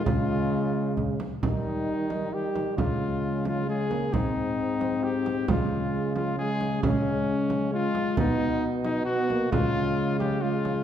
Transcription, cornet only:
\new Staff \with { instrumentName = "Cornet" } { \time 3/4 \key des \lydian \tempo 4 = 133 f'2 r4 | ees'2 g'4 | f'4. f'8 aes'4 | ees'2 g'4 |
f'4. f'8 aes'4 | des'2 f'4 | dis'4. dis'8 fis'4 | f'4. g'8 f'4 | }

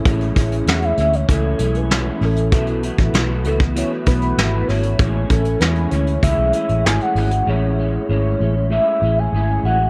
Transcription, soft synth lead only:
\new Staff \with { instrumentName = "Soft synth lead" } { \time 4/4 \key a \major \tempo 4 = 97 r4 fis''16 e''8 cis''16 a'8. b'8. a'8~ | a'4 r8 a'8 cis''8 b'4 cis''8~ | cis''8 a'8 b'8 cis''8 e''8 e''8 gis''16 fis''8. | cis''4 cis''4 e''8. gis''8. fis''8 | }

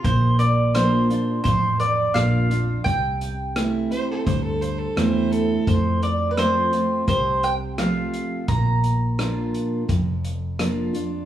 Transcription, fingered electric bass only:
\new Staff \with { instrumentName = "Fingered electric bass" } { \clef bass \time 4/4 \key bes \lydian \tempo 4 = 85 bes,,2 a,,4 bes,,4 | c,2 d,4 e,4 | f,2 c,2 | bes,,2 f,,2 | }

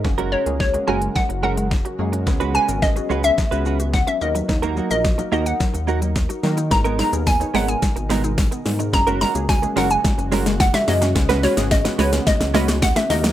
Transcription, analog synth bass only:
\new Staff \with { instrumentName = "Analog synth bass" } { \clef bass \time 4/4 \key cis \dorian \tempo 4 = 108 fis,,8. cis,8. fis,,8 r16 fis,,4~ fis,,16 fis,8 | cis,8. gis,,8. cis,8 r16 cis,4~ cis,16 dis,8 | dis,8. ais,,8. dis,8 r16 dis,4~ dis,16 dis8 | gis,,8. dis,8. gis,,8 r16 gis,,4~ gis,,16 gis,8 |
fis,,8. cis,8. fis,,8 r16 fis,,4~ fis,,16 fis,8 | cis,8. gis,,8. cis,8 r16 cis,4~ cis,16 dis,8 | }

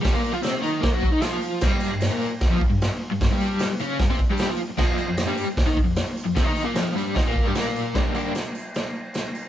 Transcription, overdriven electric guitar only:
\new Staff \with { instrumentName = "Overdriven electric guitar" } { \clef bass \time 4/4 \key g \minor \tempo 4 = 152 <g g'>16 <bes, bes>8 <f f'>16 <c c'>8 <ees ees'>8 <bes bes'>16 <fis fis'>8 <ees ees'>16 <f f'>4 | <g, g>8. g,8 <bes, bes>8 r8 <f, f>16 r16 g,8 r8 g,16~ | g,16 <g, g>4 r16 <cis cis'>8 g,16 <c c'>16 r16 <g, g>8 <f f'>16 r8 | <f, f>8. f,8 <g, g>8 r8 <ees ees'>16 r16 f,8 r8 f,16 |
<c c'>16 <ees ees'>8 <bes, bes>16 <f, f>8 <g, g>8 <ees ees'>16 <bes, bes>8 <g, g>16 <bes, bes>4 | <g, d g bes d' g'>8 <g, d g bes d' g'>8 r2. | }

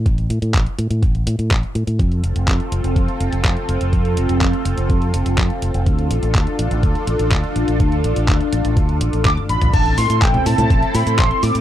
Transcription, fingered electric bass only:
\new Staff \with { instrumentName = "Fingered electric bass" } { \clef bass \time 4/4 \key a \minor \tempo 4 = 124 a,,8 a,16 a,16 a,,16 r16 a,16 a,16 a,,8 a,16 a,16 a,,16 r16 a,16 a,16 | f,8 f,,16 f,,16 f,16 r16 f,,16 f,,16 f,16 r16 f,,16 f,,16 f,16 r16 f,,16 f,,16 | f,8 f,,16 f,,16 f,16 r16 f,,16 f,,16 f,8 f,,16 f,,16 f,16 r16 f,,16 f,,16 | d,8 a,,16 a,,16 d,16 r16 a,,16 a,,16 d,16 r16 a,,16 a,,16 d,16 r16 a,,16 a,,16 |
d,8 a,,16 a,,16 d,16 r16 a,,16 a,,16 d,8 a,,16 a,,16 d,16 r16 a,,16 a,,16 | a,,8 a,16 a,16 a,,16 r16 a,16 a,16 a,,16 r16 a,16 a,16 a,,16 r16 a,16 a,16 | }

